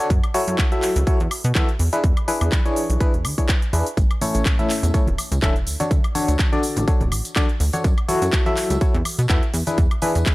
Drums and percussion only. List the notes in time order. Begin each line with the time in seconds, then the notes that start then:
0.00 cabasa
0.10 kick, closed hi-hat, cabasa
0.24 closed hi-hat, high woodblock
0.34 open hi-hat, cabasa
0.48 closed hi-hat, cabasa
0.58 kick, clap, closed hi-hat, cabasa
0.72 closed hi-hat
0.82 clap, open hi-hat, cabasa
0.96 closed hi-hat, cabasa
1.07 kick, closed hi-hat, cabasa
1.20 closed hi-hat
1.31 open hi-hat, cabasa, high woodblock
1.44 closed hi-hat, cabasa
1.55 kick, clap, closed hi-hat, cabasa
1.69 closed hi-hat
1.79 open hi-hat, cabasa
1.93 closed hi-hat, cabasa
2.04 kick, closed hi-hat, cabasa
2.17 closed hi-hat, high woodblock
2.28 open hi-hat, cabasa
2.41 closed hi-hat, cabasa, high woodblock
2.52 kick, clap, closed hi-hat, cabasa
2.65 closed hi-hat
2.76 open hi-hat, cabasa
2.90 closed hi-hat, cabasa
3.00 kick, closed hi-hat, cabasa
3.14 closed hi-hat
3.25 open hi-hat, cabasa, high woodblock
3.38 kick, closed hi-hat, cabasa
3.49 kick, clap, closed hi-hat, cabasa
3.62 closed hi-hat
3.73 open hi-hat, cabasa
3.86 closed hi-hat, cabasa
3.97 kick, closed hi-hat, tambourine, cabasa
4.11 closed hi-hat, high woodblock
4.21 open hi-hat, tambourine, high conga, cabasa
4.35 closed hi-hat, tambourine, cabasa
4.45 kick, clap, closed hi-hat, tambourine, cabasa
4.59 closed hi-hat, high conga
4.70 clap, open hi-hat, tambourine, cabasa
4.83 closed hi-hat, tambourine, cabasa
4.94 kick, closed hi-hat, tambourine, cabasa
5.07 closed hi-hat, high conga
5.18 open hi-hat, tambourine, cabasa, high woodblock
5.31 closed hi-hat, tambourine, cabasa
5.42 kick, clap, closed hi-hat, tambourine, high conga, cabasa
5.56 closed hi-hat
5.67 open hi-hat, tambourine, cabasa
5.80 closed hi-hat, tambourine, high conga, cabasa
5.91 kick, closed hi-hat, tambourine, cabasa
6.04 closed hi-hat, high woodblock
6.15 open hi-hat, tambourine, high conga, cabasa
6.28 closed hi-hat, tambourine, cabasa
6.39 kick, clap, closed hi-hat, tambourine, cabasa
6.53 closed hi-hat, high conga
6.63 open hi-hat, tambourine, cabasa
6.76 closed hi-hat, tambourine, cabasa
6.88 kick, closed hi-hat, tambourine, cabasa
7.01 closed hi-hat, high conga
7.12 open hi-hat, tambourine, cabasa, high woodblock
7.25 closed hi-hat, tambourine, cabasa
7.36 kick, clap, closed hi-hat, tambourine, high conga, cabasa
7.49 closed hi-hat
7.60 open hi-hat, tambourine, cabasa
7.73 closed hi-hat, tambourine, high conga, cabasa
7.84 kick, closed hi-hat, tambourine, cabasa
7.98 closed hi-hat, high woodblock
8.09 open hi-hat, tambourine, high conga, cabasa
8.22 closed hi-hat, tambourine, cabasa
8.32 kick, clap, closed hi-hat, tambourine, cabasa
8.46 closed hi-hat, high conga
8.57 clap, open hi-hat, tambourine, cabasa
8.70 closed hi-hat, tambourine, cabasa
8.81 kick, closed hi-hat, tambourine, cabasa
8.94 closed hi-hat, high conga
9.05 open hi-hat, tambourine, cabasa, high woodblock
9.19 closed hi-hat, tambourine, cabasa
9.29 kick, clap, closed hi-hat, tambourine, high conga, cabasa
9.43 closed hi-hat
9.54 open hi-hat, tambourine, cabasa
9.67 closed hi-hat, tambourine, high conga, cabasa
9.78 kick, closed hi-hat, tambourine, cabasa
9.91 closed hi-hat, high woodblock
10.02 open hi-hat, tambourine, high conga, cabasa
10.15 closed hi-hat, tambourine, cabasa
10.26 kick, clap, closed hi-hat, tambourine, cabasa